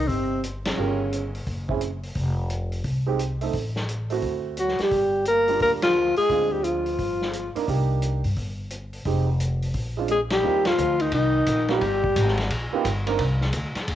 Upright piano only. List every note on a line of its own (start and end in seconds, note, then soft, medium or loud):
0.78 0.97 C#4 soft
0.78 0.98 F4 soft
0.78 0.98 G4 soft
0.78 0.98 A#4 medium
1.68 1.79 C4 soft
1.68 1.80 C#4 soft
1.68 1.80 E4 soft
1.68 1.81 G#4 medium
3.07 3.18 G#3 medium
3.07 3.18 C4 medium
3.07 3.18 D#4 medium
3.07 3.18 G4 medium
3.41 3.52 A3 medium
3.41 3.53 C4 soft
3.41 3.53 D#4 medium
3.41 3.53 A4 medium
4.10 4.54 A3 medium
4.10 4.55 C4 soft
4.10 4.55 E4 soft
4.10 4.55 F#4 medium
5.48 5.92 G3 medium
5.48 5.93 A#3 soft
5.48 5.93 D4 soft
5.48 5.93 F4 medium
6.29 6.81 G#3 medium
6.29 6.82 C4 soft
6.29 6.82 D4 soft
6.29 6.82 F4 medium
7.55 7.66 A#3 medium
7.55 7.66 D4 medium
7.55 7.67 D#4 medium
7.55 7.67 A#4 medium
7.67 8.20 A#3 medium
7.67 8.20 D4 soft
7.67 8.20 D#4 medium
7.67 8.21 G4 medium
9.06 9.26 G#3 medium
9.06 9.26 C4 soft
9.06 9.26 D#4 soft
9.06 9.27 G4 medium
9.97 10.08 G#3 medium
9.97 10.08 C4 soft
9.97 10.09 D4 soft
9.97 10.09 F4 medium
10.42 10.63 A#3 medium
10.42 10.63 C4 medium
10.42 10.63 D#4 soft
10.42 10.64 F4 medium
10.42 10.64 G4 medium
11.69 11.80 A#3 medium
11.69 11.81 B3 medium
11.69 11.81 D#4 medium
11.69 11.81 F4 medium
11.69 11.81 A#4 medium
12.73 12.84 A#3 medium
12.73 12.84 B3 medium
12.73 12.84 D#4 medium
12.73 12.84 F4 medium
12.73 12.85 G4 medium
13.06 13.18 A#3 medium
13.06 13.18 C4 medium
13.06 13.18 D4 medium
13.06 13.18 D#4 medium
13.06 13.18 A#4 medium